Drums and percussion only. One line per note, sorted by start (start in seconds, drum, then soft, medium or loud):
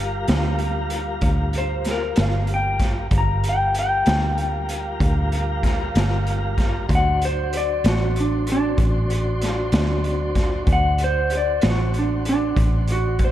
0.28 snare loud
0.28 closed hi-hat medium
0.59 closed hi-hat soft
0.90 closed hi-hat medium
1.21 kick medium
1.21 closed hi-hat medium
1.53 closed hi-hat soft
1.84 snare soft
1.84 closed hi-hat medium
2.16 snare medium
2.16 closed hi-hat medium
2.47 closed hi-hat soft
2.79 kick medium
2.79 snare soft
2.79 closed hi-hat medium
3.11 kick medium
3.11 closed hi-hat medium
3.44 closed hi-hat medium
3.75 closed hi-hat medium
4.06 snare medium
4.06 closed hi-hat medium
4.38 closed hi-hat soft
4.69 closed hi-hat medium
5.00 kick medium
5.00 closed hi-hat medium
5.32 closed hi-hat soft
5.63 kick medium
5.63 snare soft
5.63 closed hi-hat soft
5.95 snare medium
5.95 closed hi-hat medium
6.27 closed hi-hat soft
6.58 kick medium
6.58 snare soft
6.58 closed hi-hat soft
6.89 kick medium
6.89 closed hi-hat medium
7.21 closed hi-hat medium
7.53 closed hi-hat medium
7.84 snare medium
7.84 closed hi-hat medium
8.16 closed hi-hat medium
8.47 closed hi-hat medium
8.78 kick medium
8.78 closed hi-hat medium
9.10 closed hi-hat soft
9.42 snare soft
9.42 closed hi-hat medium
9.72 snare medium
9.72 closed hi-hat medium
10.04 closed hi-hat soft
10.35 kick medium
10.35 snare soft
10.35 closed hi-hat medium
10.67 kick medium
10.67 closed hi-hat medium
10.98 closed hi-hat soft
11.30 closed hi-hat soft
11.61 snare medium
11.61 closed hi-hat medium
11.94 closed hi-hat soft
12.25 closed hi-hat soft
12.57 kick medium
12.57 closed hi-hat medium
12.88 closed hi-hat soft
13.19 kick medium
13.19 closed hi-hat medium